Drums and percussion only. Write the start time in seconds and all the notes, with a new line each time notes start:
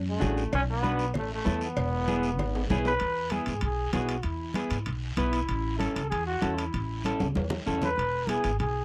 0.21 high conga, low conga, low timbale, short guiro
0.37 short guiro
0.53 cowbell, high conga, long guiro
0.84 high conga, short guiro
0.99 short guiro
1.14 cowbell, high conga, low conga, long guiro
1.45 high conga, low timbale, short guiro
1.61 short guiro
1.76 cowbell, high conga, long guiro
2.08 high conga, short guiro
2.23 short guiro
2.39 cowbell, high conga, low conga, long guiro
2.55 high timbale
2.70 high conga, low timbale, short guiro
2.85 low timbale, short guiro
3.00 high conga, high timbale, long guiro
3.30 high conga, high timbale, short guiro
3.46 high timbale, short guiro
3.61 high conga, high timbale, long guiro
3.93 high conga, high timbale, low timbale, short guiro
4.09 high timbale, short guiro
4.23 high conga, high timbale, long guiro
4.54 high conga, high timbale, short guiro
4.70 high timbale, short guiro
4.86 high conga, high timbale, long guiro
5.17 high conga, high timbale, short guiro
5.33 high timbale, short guiro
5.49 high conga, high timbale, long guiro
5.80 high conga, high timbale, short guiro
5.96 high timbale, short guiro
6.12 high conga, high timbale, long guiro
6.42 high conga, high timbale, short guiro
6.58 high timbale, short guiro
6.73 high conga, high timbale, long guiro
7.04 high conga, high timbale, short guiro
7.20 high conga, high timbale, short guiro
7.35 high conga, low timbale, long guiro
7.50 low conga, low timbale
7.66 low timbale, short guiro
7.82 low conga, low timbale, short guiro
7.96 high conga, high timbale, long guiro
8.27 high conga, high timbale, short guiro
8.44 high timbale, short guiro
8.59 high conga, high timbale, long guiro